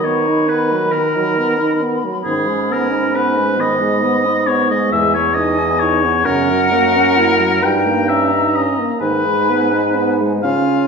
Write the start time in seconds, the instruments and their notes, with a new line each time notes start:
Already playing: bassoon D#3, clarinet D#4, flute B5
0.05 french horn B3, oboe C#5
0.28 french horn D#4
0.48 french horn B3, oboe B4
0.73 french horn F#3
0.92 french horn D#3, oboe A#4
1.16 french horn F#3
1.38 french horn B3
1.59 french horn D#4
1.82 french horn B3
2.05 french horn F#3
2.24 bassoon G#2, french horn D#3, clarinet C#4, oboe G#4
2.48 french horn G#3
2.71 french horn B3, oboe A#4
2.93 french horn D#4
3.15 french horn B3, oboe B4
3.37 french horn G#3
3.57 french horn D#3, clarinet B3, oboe D#5
3.81 french horn G#3
4.03 french horn B3
4.25 french horn D#4
4.47 french horn B3, oboe C#5
4.70 french horn G#3, oboe D#5
4.92 bassoon E2, french horn G#3, oboe E5, flute G#5
5.14 french horn B3, oboe C#5
5.35 french horn D#4, oboe D#5
5.60 french horn E4
5.80 french horn D#4, oboe C#5
6.05 french horn B3
6.25 bassoon F#2, french horn C#3, clarinet C#4, oboe A#4, flute F#5
6.50 french horn F#3
6.71 french horn A#3, clarinet F#4
6.96 french horn C#4
7.17 french horn A#3, clarinet E4
7.40 french horn F#3
7.62 bassoon G2, french horn G3, clarinet D#4, oboe G5, flute A#5
7.86 french horn A#3
8.08 french horn C#4, oboe E5
8.32 french horn D#4
8.55 french horn C#4, oboe D#5
8.79 french horn A#3
9.00 bassoon G#2, french horn D#3, clarinet D#4, oboe B4, flute G#5
9.26 french horn G#3
9.50 french horn B3
9.73 french horn D#4
9.96 french horn B3
10.20 french horn G#3
10.43 bassoon C#3, french horn C#4, clarinet F4, oboe F5, flute G#5